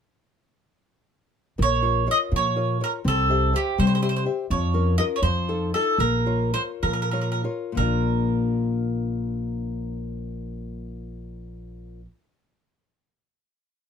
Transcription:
1.58 A#1 A#3
1.62 C#5
1.82 F4 A#4 C#5
2.07 F4 A#4 C#5
2.11 D#5
2.31 A#2 F3
2.36 C#5
2.56 F4 A#4 C#5
2.80 F4 A#4 C#5
3.04 C2 C4 A4
3.29 G4 C5 E5
3.53 G4 C5 E5
3.78 C3 G3 C5
3.87 C5
3.95 C5
4.02 G4 C5 E5
4.09 C5
4.16 C5
4.25 G4 C5 E5
4.50 F2 F3 C#5
4.74 C#4 F4 A#4
4.98 C#4 F4 A#4 D#5
5.16 C#5
5.22 F2 F3 C5
5.48 D#4 F4 A4
5.74 D#4 F4 A4
5.98 A#1 A#3 A#4
6.26 F4 A#4 C#5
6.53 F4 A#4 C5 C#5
6.83 A#2 F3 A#4
6.93 A#4
7.02 A#4
7.11 F4 A#4 C#5
7.21 A#4
7.32 A#4
7.44 F4 A#4 C#5
7.72 A#2 F3
7.77 A#1 A#3 D4 A#4
7.82 F4

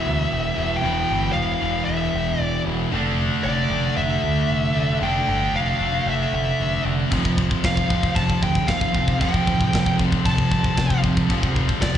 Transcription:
Already playing: E2 B2 E3 E5
0.07 D2
0.32 E1
0.56 E1 E2 B2 E3
0.77 G5
0.82 E1 E2 B2
0.86 E3
1.11 G1
1.33 E1 F5
1.60 E1 B2 E3
1.64 E2
1.85 E1 E5
2.15 E1
2.40 E1 D5
2.65 E1 B2 E3
2.69 E2
2.91 F1 D3 A3 D4
3.44 F1 D5
3.70 F1 D3 A3 D4
3.97 F1 E5
4.24 D2
4.50 F1
4.74 F1 A3 D4
4.78 D3
5.01 F1 D3 A3 G5
5.05 D4
5.28 G1
5.54 F1 F5
5.79 F1 D3 A3 D4
6.06 F1 E5
6.33 F1
6.60 F1
6.83 F1 A3 D4
6.87 D3
7.09 F1 F2 C3 F3 C4 A4 C5, kick, crash
7.25 kick
7.38 kick
7.51 kick
7.64 F1 F5, kick, snare, crash
7.77 kick
7.88 F1 F2 C3 F3, kick
8.03 kick
8.15 F1 A5, kick, crash
8.30 kick
8.43 D2 G5, kick
8.55 kick
8.67 F1 F5, kick, snare, crash
8.81 kick
8.92 F1 C3 F3, kick
8.97 F2
9.08 kick
9.19 F1 F2 C3 F3 G5, kick, crash
9.34 kick
9.47 A1, kick
9.61 kick
9.73 F1, kick, snare, crash
9.86 kick
9.97 F1 F2 C3 F3, kick
10.12 kick
10.25 F1 A5, kick, crash
10.38 kick
10.52 F1, kick
10.64 kick
10.77 F1, kick, snare, crash
10.90 kick
11.02 F1 C3 F3, kick
11.07 F2
11.17 kick
11.26 F2 C3 D5, kick, crash
11.30 F1 F3
11.43 kick
11.56 kick
11.69 kick
11.82 F1 D5, kick, snare, crash

